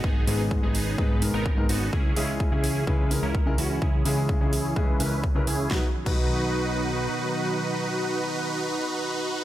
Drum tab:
CC |----------------|----------------|----------------|---x------------|
HH |--o---o---o---o-|--o---o---o---o-|--o---o---o---o-|----------------|
SD |----------------|----------------|----------------|o---------------|
BD |o---o---o---o---|o---o---o---o---|o---o---o---o---|o--o------------|

CC |----------------|
HH |----------------|
SD |----------------|
BD |----------------|